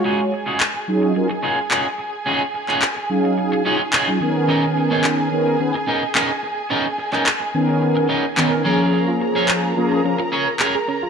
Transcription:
<<
  \new Staff \with { instrumentName = "Violin section" } { \time 4/4 \key ees \minor \tempo 4 = 108 <aes' aes''>1~ | <aes' aes''>1~ | <aes' aes''>1~ | <aes' aes''>1 |
<bes' bes''>1 | }
  \new Staff \with { instrumentName = "Synth arpeggio sound" } { \time 4/4 \key ees \minor r1 | r1 | r1 | r1 |
des'16 f'16 aes'16 bes'16 aes'16 aes'16 des'16 f'16 des'16 f'16 aes'16 bes'16 aes'16 aes'16 des'16 f'16 | }
  \new Staff \with { instrumentName = "Clean electric guitar" } { \time 4/4 \key ees \minor <des' ees' f' ges' aes'>16 r8 <des' ees' f' ges' aes'>16 r4. <des' ees' f' ges' aes'>16 r16 <des' ees' f' ges' aes'>16 r8. | <des' ees' f' ges' aes'>16 r8 <des' ees' f' ges' aes'>16 r4. <des' ees' f' ges' aes'>16 r16 <des' ees' f' ges' aes'>16 r8. | <b cis' dis' ais'>16 r8 <b cis' dis' aes'>16 r4. <b cis' dis' ais'>16 r16 <b cis' dis' ais'>16 r8. | <b cis' dis' ais'>16 r8 <b cis' dis' ais'>16 r4. <b cis' dis' ais'>16 r16 <b cis' dis' ais'>16 r16 <des' aes' bes'>8~ |
<des' aes' bes'>16 r8 <des' aes' bes'>16 r4. <des' aes' des''>16 r16 <des' aes' bes'>16 r8. | }
  \new Staff \with { instrumentName = "Analog polysynth" } { \time 4/4 \key ees \minor <aes f' ges' des''>8 r4 <ges des' ees' f' aes'>8 <ges des' f' bes'>16 r4. r16 | r4. <ges des' ees' aes' f''>4 <ges des' ees' f' aes'>16 r8 <ges des' ees' f' aes'>16 <ees ces' des' bes'>8~ | <ees ces' des' bes'>4. <dis b cis' ais'>8 <dis b cis' b'>16 r4. r16 | r4. <dis b cis' ais'>4 r8 <dis b cis' ais'>8 <f bes des' aes'>8~ |
<f bes des' aes'>4. <f bes des' aes'>8 <f bes des' bes'>16 r4. r16 | }
  \new DrumStaff \with { instrumentName = "Drums" } \drummode { \time 4/4 r4 hc4 r4 hc4 | r8. hc16 hc4 r4 hc4 | r4 hc4 r4 hc4 | r8. hc16 hc4 r4 hc4 |
r4 hc4 r4 hc4 | }
>>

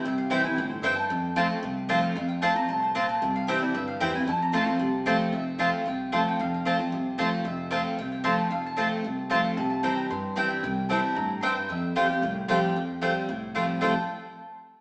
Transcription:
<<
  \new Staff \with { instrumentName = "Mandolin" } { \time 4/4 \key f \major \tempo 4 = 226 e''8 f''8 g''8 aes''8 g''8 c''8 e''8 a''8~ | a''2 r2 | f''8 g''8 a''8 bes''8 a''8 c''8 f''8 a''8 | g''8 f''8 e''8 d''8 e''8 f''8 g''8 aes''8 |
a''8 bes''8 c'''8 c'''4. r8 c''8 | e''4 f''4 g''4 a''8 g''8 | f''8 f''4 r2 c''8 | e''4 f''4 g''8 g''8 a''4 |
f''8 a''4 r2 f''8 | a''8 a''8 bes''8 bes''8 c'''4 c'''8 e''8 | g''4 a''4 bes''4 c'''8 c''8 | e''4 f''4 g''2~ |
g''2. r4 | a''8 r2. r8 | }
  \new Staff \with { instrumentName = "Mandolin" } { \time 4/4 \key f \major r4 <c' e' c'' g''>8 r4. <c' e' c'' g''>8 r8 | r4 <c' f' c'' a''>8 r4. <c' f' c'' a''>8 r8 | r4 <c' f' c'' a''>8 r4. <c' f' c'' a''>8 r8 | r4 <c' e' c'' g''>8 r4. <c' e' c'' g''>8 r8 |
r4 <c' f' c'' a''>8 r4. <c' f' c'' a''>8 r8 | r4 <c' f' c'' a''>8 r4. <c' f' c'' a''>8 r8 | r4 <c' f' c'' a''>8 r4. <c' f' c'' a''>8 r8 | r4 <c' f' c'' a''>8 r4. <c' f' c'' a''>8 r8 |
r4 <c' f' c'' a''>8 r4. <c' f' c'' a''>8 r8 | r4 <c' e' c'' g''>8 r4. <c' e' c'' g''>8 r8 | r4 <c' e' c'' g''>8 r4. <c' e' c'' g''>8 r8 | r4 <a f' c'' g''>8 r4. <a f' c'' g''>8 r8 |
r4 <a f' c'' g''>8 r4. <a f' c'' g''>8 r8 | <a f' c'' g''>8 r2. r8 | }
  \new Staff \with { instrumentName = "Steel-string acoustic guitar" } { \time 4/4 \key f \major << { r4 <e g c' e'>8 <c' e'>8 r2 | r4 <f a c' f'>4 r4 <f a c' f'>4 | r4 <f a c' f'>8 <c' f'>8 r2 | r4 <e g c' e'>8 <c' e'>8 r4 <e g c' e'>8 <c' e'>8 |
r4 <f a c' f'>8 <c' f'>8 r4 <f a c' f'>4 | r4 <f a c' f'>4 r4 <f a c' f'>4 | r4 <f a c' f'>8 <c' f'>8 r4 <f a c' f'>4 | r4 <f a c' f'>4 r4 <f a c' f'>4 |
r4 <f a c' f'>4 r4 <f a c' f'>4 | r4 <e g c' e'>4 r4 <e g c' e'>4 | r4 <e g c' e'>4 r2 | r4 <f g c' g'>8 <c' g'>8 r4 <f g c' g'>4 |
r4 <f g c' g'>4 r4 <f g c' g'>4 | <f, a, f g c' g'>8 r2. r8 | } \\ { c2 a,4 g,4 | f,2 c2 | f,2 a,4 bes,4 | c2 g,2 |
f,2 c2 | f,2 c2 | f,2 c2 | f,2 c2 |
f,2 c2 | c2 g,2 | c2 a,4 g,4 | f,2 a,2 |
f,2 a,2 | r1 | } >> }
  \new Staff \with { instrumentName = "Upright bass" } { \clef bass \time 4/4 \key f \major c,2 g,,2 | f,2 c,2 | f,2 c,2 | c,2 d,4 e,4 |
f,2 c,2 | f,,2 c,2 | f,,2 c,2 | f,,2 c,2 |
f,,2 c,2 | c,2 g,2 | c,2 g,2 | f,2 c,2 |
f,2 c,2 | f,,8 r2. r8 | }
>>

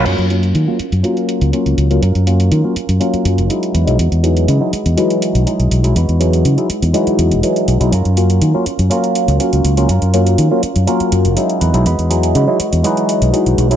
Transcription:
<<
  \new Staff \with { instrumentName = "Clean electric guitar" } { \time 4/4 \key fis \major \tempo 4 = 122 <cis' eis' ais'>2 <cis' eis' ais'>2 | <cis' eis' ais'>4 <cis' eis' ais'>4 <cis' eis' ais'>4. <gis dis' fis' b'>8~ | <gis dis' fis' b'>4 <gis dis' fis' b'>4 <gis dis' fis' b'>2 | <gis dis' fis' b'>2 <gis dis' fis' b'>2 |
<cis' eis' ais'>2 <cis' eis' ais'>2 | <cis' eis' ais'>2 <cis' eis' ais'>4. <dis' fis' b'>8 | <gis dis' fis' b'>4 <gis dis' fis' b'>4 <gis dis' fis' b'>2 | }
  \new Staff \with { instrumentName = "Clav" } { \time 4/4 \key fis \major <fis ais cis' eis'>8 <fis ais cis' eis'>8. <fis ais cis' eis'>16 r8 <fis ais cis' eis'>4 <fis ais cis' eis'>8. <fis ais cis' eis'>16 | r8 <fis ais cis' eis'>8. <fis ais cis' eis'>16 r8 <fis ais cis' eis'>4 <fis gis dis' e'>8. <fis gis dis' e'>16 | r8 <e fis gis dis'>8. <fis gis dis' e'>16 r8 <e fis gis dis'>4 <e fis gis dis'>8. <fis gis dis' e'>16 | r8 <e fis gis dis'>8. <fis gis dis' e'>16 r8 <e fis gis dis'>4 <e fis gis dis'>8. <fis gis dis' e'>16 |
r8 <fis ais cis' eis'>8. <fis ais cis' eis'>16 r8 <fis ais cis' eis'>4 <fis ais cis' eis'>8. <fis ais cis' eis'>16 | r8 <fis ais cis' eis'>8. <fis ais cis' eis'>16 r8 <fis ais cis' eis'>4 <fis gis dis' e'>8. <fis gis dis' e'>16 | r8 <e fis gis dis'>8. <fis gis dis' e'>16 r8 <e fis gis dis'>4 <e fis gis dis'>8. <fis gis dis' e'>16 | }
  \new Staff \with { instrumentName = "Fingered electric bass" } { \clef bass \time 4/4 \key fis \major fis,16 fis,8. dis16 r8 fis,16 r8. cis,16 r16 cis,16 cis,8 | fis,16 fis,8. dis16 r8 fis,16 r8 fis,16 fis,,16 r8 e,16 b,,16 | e,16 e,8. cis16 r8 e,16 r8. b,,16 r16 b,,16 b,,8 | e,16 e,8. cis16 r8 e,16 r8 e,16 e,,16 r8 b,,16 b,,16 |
fis,16 fis,8. dis16 r8 fis,16 r8. cis,16 r16 cis,16 cis,8 | fis,16 fis,8. dis16 r8 fis,16 r8 fis,16 fis,,16 r8 e,16 b,,16 | e,16 e,8. cis16 r8 e,16 r8. b,,16 r16 b,,16 b,,8 | }
  \new DrumStaff \with { instrumentName = "Drums" } \drummode { \time 4/4 <cymc hh>16 hh16 hh16 hh16 hh8 hh16 hh16 hh16 hh16 hh16 hh16 hh16 hh16 hh16 hh16 | hh16 hh16 hh16 hh16 hh8 hh16 hh16 hh16 hh16 hh16 hh16 hh16 hh16 hh16 hh16 | hh16 hh16 hh16 hh16 hh8 hh16 hh16 hh16 hh16 hh16 hh16 hh16 hh16 hh16 hh16 | hh16 hh16 hh16 hh16 hh16 hh16 hh16 hh16 hh16 hh16 hh16 hh16 hh16 hh16 hh16 hh16 |
hh16 hh16 hh16 hh16 hh8 hh16 hh16 hh16 hh16 hh16 hh16 hh16 hh16 hh16 hh16 | hh16 hh16 hh16 hh16 hh8 hh16 hh16 hh16 hh16 hh16 hh16 hh16 hh16 hh16 hh16 | hh16 hh16 hh16 hh16 hh8 hh16 hh16 hh16 hh16 hh16 hh16 hh16 hh16 hh16 hh16 | }
>>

